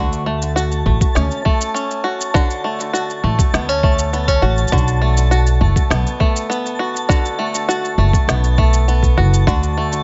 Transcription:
0.00 0.81 D2 medium
0.00 0.26 D3 medium
0.00 0.26 A3 medium
0.00 0.56 F#4 medium
0.00 10.03 A5 medium
0.13 shaker soft
0.26 0.85 A3 medium
0.42 shaker medium
0.56 2.03 F#4 medium
0.56 shaker soft
0.72 shaker soft
0.86 0.98 A1 medium
0.86 1.45 A3 soft
0.86 kick soft
1.01 kick medium
1.01 shaker medium
1.15 1.28 D2 medium
1.15 1.45 C#4 medium
1.15 snare medium
1.15 shaker soft
1.31 shaker soft
1.45 2.64 A3 medium
1.45 kick medium
1.61 shaker medium
1.74 3.53 C#4 medium
1.74 shaker soft
1.91 shaker soft
2.04 2.34 F#4 medium
2.21 shaker medium
2.34 4.71 D3 medium
2.34 2.93 F#4 medium
2.34 kick loud
2.34 shaker medium
2.50 shaker soft
2.64 3.23 A3 medium
2.80 shaker medium
2.93 4.41 F#4 medium
2.93 shaker medium
3.10 shaker soft
3.24 3.36 A1 medium
3.24 3.83 A3 medium
3.39 kick loud
3.39 shaker medium
3.54 4.38 D2 medium
3.54 3.69 B3 medium
3.54 snare medium
3.54 shaker medium
3.69 4.13 C#4 soft
3.69 shaker soft
3.83 5.01 A3 medium
3.83 kick loud
3.99 shaker medium
4.13 4.28 B3 medium
4.13 shaker medium
4.28 4.73 C#4 soft
4.28 kick medium
4.28 shaker soft
4.42 4.66 A1 medium
4.42 4.73 F#4 medium
4.58 shaker soft
4.68 shaker soft
4.72 5.56 B1 medium
4.72 7.08 D3 medium
4.72 5.31 F#4 medium
4.72 kick loud
4.78 shaker soft
4.88 shaker soft
5.02 5.60 A3 medium
5.17 shaker medium
5.31 6.78 F#4 medium
5.31 shaker medium
5.47 shaker soft
5.61 5.73 F#1 medium
5.61 6.20 A3 soft
5.61 kick medium
5.76 kick loud
5.76 shaker medium
5.90 6.02 B1 medium
5.90 6.48 B3 medium
5.90 snare medium
5.90 shaker medium
6.07 shaker soft
6.20 7.38 A3 medium
6.20 kick loud
6.36 shaker medium
6.50 8.27 B3 medium
6.50 shaker medium
6.66 shaker soft
6.79 7.09 F#4 medium
6.96 shaker medium
7.09 9.46 D3 medium
7.09 7.68 F#4 medium
7.09 kick loud
7.09 shaker medium
7.26 shaker soft
7.39 7.98 A3 medium
7.55 shaker medium
7.68 9.16 F#4 medium
7.68 shaker soft
7.85 shaker soft
7.98 8.10 F#1 medium
7.98 8.58 A3 medium
8.13 kick loud
8.13 shaker medium
8.27 9.12 B1 medium
8.27 8.87 B3 medium
8.27 snare medium
8.27 shaker medium
8.44 shaker soft
8.58 9.77 A3 medium
8.58 kick medium
8.74 shaker medium
8.88 9.47 B3 medium
8.88 shaker soft
9.03 kick medium
9.03 shaker soft
9.17 9.41 F#1 medium
9.17 9.47 F#4 medium
9.34 shaker medium
9.47 10.03 D2 medium
9.47 10.03 D3 medium
9.47 10.03 F#4 medium
9.47 kick loud
9.47 shaker soft
9.63 shaker soft
9.77 10.03 A3 medium
9.93 shaker medium

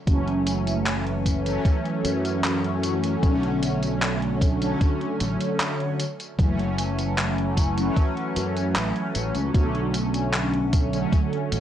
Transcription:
0.05 1.57 F#1 medium
0.05 1.40 E3 medium
0.05 1.41 F#3 medium
0.05 1.41 A3 medium
0.05 1.42 C#4 loud
0.05 kick loud
0.05 closed hi-hat medium
0.05 tambourine soft
0.27 closed hi-hat soft
0.47 closed hi-hat loud
0.47 tambourine medium
0.67 closed hi-hat medium
0.67 tambourine soft
0.86 clap loud
0.86 closed hi-hat medium
0.86 tambourine soft
1.06 closed hi-hat soft
1.26 kick medium
1.26 closed hi-hat medium
1.26 tambourine medium
1.44 3.18 E3 medium
1.44 3.18 F#3 medium
1.44 3.19 A3 medium
1.44 3.19 C#4 loud
1.44 closed hi-hat medium
1.44 tambourine soft
1.65 kick loud
1.65 closed hi-hat medium
1.65 tambourine soft
1.85 closed hi-hat soft
2.05 3.15 F#2 medium
2.05 closed hi-hat medium
2.05 tambourine medium
2.25 closed hi-hat medium
2.25 tambourine soft
2.44 clap loud
2.44 closed hi-hat medium
2.44 tambourine soft
2.64 closed hi-hat soft
2.83 closed hi-hat loud
2.83 tambourine medium
3.04 closed hi-hat medium
3.04 tambourine soft
3.22 4.73 B1 loud
3.22 4.56 D3 medium
3.22 4.57 F#3 medium
3.22 4.57 A3 medium
3.22 4.58 C#4 loud
3.22 kick loud
3.22 closed hi-hat medium
3.22 tambourine soft
3.43 closed hi-hat soft
3.63 closed hi-hat medium
3.63 tambourine medium
3.83 closed hi-hat medium
3.83 tambourine soft
4.02 clap loud
4.02 closed hi-hat medium
4.02 tambourine soft
4.22 closed hi-hat soft
4.41 kick loud
4.41 closed hi-hat medium
4.41 tambourine medium
4.60 5.97 D3 medium
4.60 5.97 F#3 medium
4.60 5.98 A3 medium
4.60 5.98 C#4 loud
4.60 closed hi-hat medium
4.60 tambourine soft
4.81 kick loud
4.81 closed hi-hat medium
4.81 tambourine soft
5.01 closed hi-hat soft
5.20 5.36 A1 medium
5.20 closed hi-hat medium
5.20 tambourine medium
5.41 closed hi-hat medium
5.41 tambourine soft
5.60 clap loud
5.60 closed hi-hat medium
5.60 tambourine soft
5.80 closed hi-hat soft
6.00 closed hi-hat medium
6.00 tambourine medium
6.20 closed hi-hat medium
6.20 tambourine soft
6.37 7.89 F#1 loud
6.37 7.72 E3 medium
6.37 7.73 F#3 medium
6.37 7.73 A3 medium
6.37 7.74 C#4 medium
6.37 kick loud
6.37 closed hi-hat medium
6.37 tambourine soft
6.59 closed hi-hat soft
6.78 closed hi-hat medium
6.78 tambourine medium
6.99 closed hi-hat medium
6.99 tambourine soft
7.18 clap loud
7.18 closed hi-hat medium
7.18 tambourine soft
7.38 closed hi-hat soft
7.57 kick medium
7.57 closed hi-hat medium
7.57 tambourine medium
7.76 9.49 E3 medium
7.76 9.50 F#3 medium
7.76 9.51 A3 medium
7.76 9.51 C#4 loud
7.76 closed hi-hat soft
7.76 tambourine soft
7.97 kick loud
7.97 closed hi-hat medium
7.97 tambourine soft
8.17 closed hi-hat soft
8.36 8.75 F#2 medium
8.36 closed hi-hat medium
8.36 tambourine medium
8.57 closed hi-hat soft
8.57 tambourine soft
8.76 8.91 A1 medium
8.76 clap loud
8.76 closed hi-hat soft
8.76 tambourine soft
8.96 closed hi-hat soft
9.15 9.30 A1 medium
9.15 closed hi-hat medium
9.15 tambourine medium
9.35 9.50 C#2 medium
9.35 closed hi-hat medium
9.35 tambourine soft
9.53 11.04 B1 loud
9.53 10.88 D3 medium
9.53 10.88 F#3 medium
9.53 10.89 A3 medium
9.53 10.89 C#4 medium
9.53 kick loud
9.53 closed hi-hat medium
9.53 tambourine soft
9.75 closed hi-hat soft
9.94 closed hi-hat medium
9.94 tambourine medium
10.14 closed hi-hat soft
10.14 tambourine soft
10.33 clap loud
10.33 closed hi-hat soft
10.33 tambourine soft
10.54 closed hi-hat soft
10.73 kick loud
10.73 closed hi-hat medium
10.73 tambourine medium
10.92 11.60 D3 medium
10.92 11.60 F#3 medium
10.92 11.60 A3 medium
10.92 11.60 C#4 loud
10.92 closed hi-hat soft
10.92 tambourine soft
11.12 kick loud
11.12 closed hi-hat soft
11.12 tambourine soft
11.33 closed hi-hat soft
11.52 11.60 A1 medium
11.52 closed hi-hat medium
11.52 tambourine medium

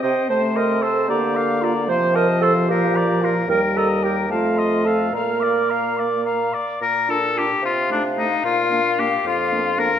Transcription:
0.00 0.15 C3 medium
0.00 0.31 C4 medium
0.00 0.29 C5 medium
0.00 0.29 D#5 soft
0.04 0.29 G5 soft
0.30 1.11 C3 medium
0.30 0.82 A3 medium
0.30 0.58 C5 soft
0.30 0.42 C5 medium
0.30 0.58 A5 soft
0.55 0.84 A#4 medium
0.55 0.84 D#5 soft
0.55 0.84 C6 soft
0.82 1.08 A4 medium
0.82 1.08 C5 soft
0.82 1.08 A5 soft
1.09 1.88 D3 medium
1.09 1.90 A#3 medium
1.09 1.61 G4 medium
1.09 1.38 D5 soft
1.09 1.37 A#5 soft
1.35 1.66 F5 soft
1.35 1.63 D6 soft
1.62 1.74 F4 medium
1.62 1.90 D5 soft
1.62 1.87 A#5 soft
1.88 2.71 C3 medium
1.88 3.48 F3 medium
1.88 2.15 C5 medium
1.88 2.17 C5 medium
1.88 2.16 F5 soft
2.14 2.28 A#4 medium
2.14 2.45 D#5 soft
2.14 2.43 A5 soft
2.41 2.54 A4 medium
2.41 2.69 C5 soft
2.41 2.68 F5 soft
2.68 3.51 A#2 medium
2.68 3.21 G4 medium
2.68 2.98 A#4 soft
2.68 2.96 F5 medium
2.95 3.26 D5 soft
2.95 3.23 A#5 soft
3.22 3.35 F4 medium
3.22 3.50 A#4 soft
3.22 3.49 F5 soft
3.49 4.32 D#2 medium
3.49 4.29 G3 medium
3.49 3.61 A#4 medium
3.49 3.78 A#4 soft
3.49 3.78 G5 soft
3.77 3.89 A4 medium
3.77 4.05 D#5 soft
3.77 4.05 A#5 soft
4.03 4.16 G4 medium
4.03 4.30 A#4 soft
4.03 4.29 G5 soft
4.30 5.13 F2 medium
4.30 5.12 A3 medium
4.30 4.85 F4 medium
4.30 4.60 F5 soft
4.30 4.58 A5 soft
4.57 4.88 D#5 soft
4.57 4.86 C6 soft
4.85 5.13 A4 medium
4.85 5.14 F5 soft
4.85 5.12 A5 soft
5.12 6.50 A#2 soft
5.12 6.36 A#3 medium
5.12 6.51 A#4 medium
5.12 5.45 F5 soft
5.12 5.42 A#5 soft
5.40 5.72 D5 soft
5.40 5.71 D6 soft
5.70 6.01 F5 soft
5.70 5.99 A#5 soft
5.97 6.25 D5 soft
5.97 6.24 D6 soft
6.25 6.55 F5 soft
6.25 6.54 A#5 soft
6.53 6.81 D5 soft
6.53 6.81 D6 soft
6.81 7.49 A#2 medium
6.81 7.12 A#4 medium
7.08 7.18 D4 soft
7.08 7.18 F4 soft
7.08 7.40 A4 medium
7.36 7.46 D4 soft
7.36 7.46 F4 soft
7.36 7.64 G4 medium
7.62 8.30 C3 medium
7.62 7.90 F4 medium
7.62 9.99 F5 medium
7.90 7.99 A3 soft
7.90 8.03 D4 medium
7.90 8.00 D#4 soft
8.16 8.27 A3 soft
8.16 8.26 D#4 soft
8.16 8.44 D#4 medium
8.44 9.12 A#2 soft
8.44 9.01 F4 medium
8.71 8.80 A#3 soft
8.71 8.81 D4 soft
8.98 9.08 A#3 soft
8.98 9.07 D4 soft
8.98 9.25 G4 medium
9.24 9.92 F2 medium
9.24 9.80 F4 medium
9.52 9.62 A#3 soft
9.52 9.61 D4 soft
9.78 9.88 A#3 soft
9.78 9.88 D4 soft
9.78 9.99 A#4 medium

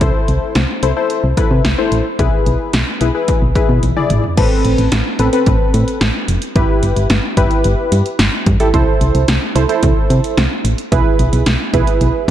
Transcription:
0.01 0.11 C2 loud
0.01 0.53 E4 medium
0.01 0.53 A4 medium
0.01 0.53 C5 medium
0.01 kick loud
0.01 closed hi-hat medium
0.28 0.38 C2 loud
0.28 closed hi-hat medium
0.55 0.66 C2 loud
0.55 snare loud
0.55 closed hi-hat medium
0.83 0.93 C2 medium
0.83 0.92 E4 medium
0.83 0.92 A4 medium
0.83 0.92 C5 medium
0.83 closed hi-hat medium
0.97 1.23 E4 medium
0.97 1.23 A4 medium
0.97 1.23 C5 medium
1.10 closed hi-hat medium
1.24 1.34 C2 loud
1.37 1.64 E4 medium
1.37 1.64 A4 medium
1.37 1.64 B4 medium
1.37 kick medium
1.37 closed hi-hat medium
1.51 1.61 C3 loud
1.65 1.75 C2 medium
1.65 snare loud
1.65 closed hi-hat medium
1.78 2.04 E4 medium
1.78 2.04 A4 medium
1.78 2.04 C5 medium
1.92 2.02 A1 medium
1.92 closed hi-hat medium
2.19 2.29 B1 loud
2.19 2.71 E4 medium
2.19 2.71 G#4 medium
2.19 2.71 B4 medium
2.19 kick loud
2.19 closed hi-hat medium
2.46 2.56 B1 loud
2.46 closed hi-hat medium
2.73 2.84 B1 loud
2.73 snare loud
2.73 closed hi-hat medium
3.01 3.11 B1 loud
3.01 3.10 E4 medium
3.01 3.10 G#4 medium
3.01 3.10 B4 medium
3.01 closed hi-hat medium
3.15 3.41 E4 medium
3.15 3.41 G#4 medium
3.15 3.41 B4 medium
3.28 kick medium
3.28 closed hi-hat medium
3.42 3.52 B1 medium
3.55 3.82 E4 medium
3.55 3.82 G#4 medium
3.55 3.82 B4 medium
3.55 kick medium
3.55 closed hi-hat medium
3.69 3.79 B2 loud
3.83 3.93 B1 medium
3.83 closed hi-hat medium
3.83 high tom medium
3.97 4.23 E4 medium
3.97 4.23 G#4 medium
3.97 4.23 D5 medium
3.97 mid tom medium
4.10 4.20 G#1 medium
4.10 closed hi-hat medium
4.10 mid tom medium
4.24 floor tom medium
4.37 4.47 A1 loud
4.37 4.90 C4 medium
4.37 4.90 A4 medium
4.37 4.90 B4 medium
4.37 kick loud
4.37 closed hi-hat medium
4.37 crash loud
4.65 4.75 A1 loud
4.65 closed hi-hat medium
4.78 4.88 A1 loud
4.78 closed hi-hat medium
4.92 5.02 A1 loud
4.92 snare loud
4.92 closed hi-hat medium
5.19 5.29 A1 loud
5.19 5.28 C4 medium
5.19 5.28 A4 medium
5.19 5.28 B4 medium
5.19 closed hi-hat medium
5.33 6.03 C4 medium
5.33 6.03 A4 medium
5.33 6.03 B4 medium
5.33 closed hi-hat medium
5.46 5.57 A1 loud
5.46 kick medium
5.46 closed hi-hat medium
5.74 5.84 A2 loud
5.74 closed hi-hat medium
5.88 closed hi-hat soft
6.01 6.11 A1 loud
6.01 snare loud
6.01 closed hi-hat medium
6.28 6.38 F1 loud
6.28 closed hi-hat medium
6.42 closed hi-hat medium
6.56 6.66 G1 loud
6.56 7.08 E4 medium
6.56 7.08 G4 medium
6.56 7.08 B4 loud
6.56 kick loud
6.56 closed hi-hat medium
6.83 6.93 G1 loud
6.83 closed hi-hat medium
6.96 7.07 G1 loud
6.96 closed hi-hat medium
7.10 7.20 G1 loud
7.10 snare loud
7.10 closed hi-hat medium
7.37 7.47 G1 loud
7.37 8.07 E4 medium
7.37 8.07 G4 medium
7.37 8.07 B4 loud
7.37 kick medium
7.37 closed hi-hat medium
7.51 closed hi-hat medium
7.64 7.75 G1 loud
7.64 closed hi-hat medium
7.92 8.02 G2 loud
7.92 closed hi-hat medium
8.06 closed hi-hat soft
8.19 8.29 G1 loud
8.19 snare loud
8.19 closed hi-hat medium
8.46 8.56 G2 loud
8.46 kick loud
8.46 closed hi-hat medium
8.60 8.69 E4 medium
8.60 8.69 G4 medium
8.60 8.69 A4 medium
8.60 closed hi-hat medium
8.74 8.84 C2 loud
8.74 9.26 E4 medium
8.74 9.26 A4 medium
8.74 9.26 C5 loud
8.74 kick loud
8.74 closed hi-hat medium
9.01 9.11 C2 loud
9.01 closed hi-hat medium
9.15 9.25 C2 loud
9.15 closed hi-hat medium
9.28 9.38 C2 loud
9.28 snare loud
9.28 closed hi-hat medium
9.55 9.66 C2 loud
9.55 9.64 E4 medium
9.55 9.64 A4 medium
9.55 9.64 C5 loud
9.55 closed hi-hat medium
9.69 10.39 E4 medium
9.69 10.39 A4 medium
9.69 10.39 C5 medium
9.69 closed hi-hat medium
9.83 9.93 C2 loud
9.83 kick medium
9.83 closed hi-hat medium
10.10 10.20 C3 loud
10.10 closed hi-hat medium
10.24 closed hi-hat medium
10.37 10.47 C2 medium
10.37 snare loud
10.37 closed hi-hat medium
10.65 10.75 A1 medium
10.65 closed hi-hat medium
10.78 closed hi-hat medium
10.92 11.02 B1 loud
10.92 11.44 E4 medium
10.92 11.44 G#4 medium
10.92 11.44 B4 loud
10.92 kick loud
10.92 closed hi-hat medium
11.19 11.29 B1 loud
11.19 closed hi-hat medium
11.33 11.43 B1 loud
11.33 closed hi-hat medium
11.46 11.56 B1 loud
11.46 snare loud
11.46 closed hi-hat medium
11.74 11.84 B1 loud
11.74 12.31 E4 medium
11.74 12.31 G#4 medium
11.74 12.31 B4 medium
11.74 kick medium
11.74 closed hi-hat medium
11.87 closed hi-hat medium
12.01 12.11 B1 loud
12.01 closed hi-hat medium

